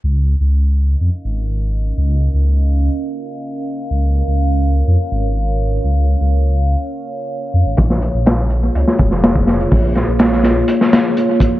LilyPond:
<<
  \new Staff \with { instrumentName = "Analog synth pad" } { \time 4/4 \key des \major \tempo 4 = 124 << { <des' bes' f''>1~ | <des' bes' f''>1~ | <des' bes' f''>1~ | <des' bes' f''>1 |
<bes f'>1~ | <bes f'>1 | } \\ { ees''1~ | ees''1 | des''1~ | des''1 |
aes'1~ | aes'1 | } >> }
  \new Staff \with { instrumentName = "Detuned saw bass" } { \clef bass \time 4/4 \key des \major des,8. des,4~ des,16 f,16 r16 aes,,4. | des,8. des,4~ des,16 r2 | des,8. des,4~ des,16 f,16 r16 aes,,4. | des,8. des,4~ des,16 r4. f,16 aes,,16 |
bes,,8. bes,,4~ bes,,16 des,16 r16 f,,4. | bes,,8. bes,,4~ bes,,16 r2 | }
  \new DrumStaff \with { instrumentName = "Drums" } \drummode { \time 4/4 r4 r4 r4 r4 | r4 r4 r4 r4 | r4 r4 r4 r4 | r4 r4 r4 r4 |
<hh bd>16 sn16 hh8 <hh sn>8 hh8 hh16 sn16 <hh bd>16 sn16 <hh sn>16 bd16 <hh sn>16 hh16 | <hho bd>8 <hh sn>8 <hh sn>16 sn16 <hh sn>8 hh16 sn16 <hh sn>8 hh8 <hh bd>8 | }
>>